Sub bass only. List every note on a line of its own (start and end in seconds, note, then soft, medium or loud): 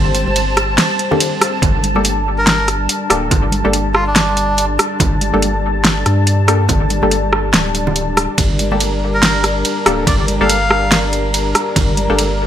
0.00 0.25 G1 loud
0.27 0.78 G1 loud
1.62 2.88 G1 loud
3.10 3.30 D1 medium
3.31 3.63 G1 loud
3.65 4.78 G1 medium
5.00 5.32 G1 loud
5.34 6.05 G1 loud
6.06 6.68 G2 loud
6.69 7.01 G1 loud
7.03 7.53 G1 medium
7.54 8.28 D1 loud
8.38 9.64 G1 loud
9.86 10.06 D1 medium
10.07 10.39 G1 loud
10.41 11.54 G1 loud
11.76 12.08 G1 loud
12.10 12.47 G1 loud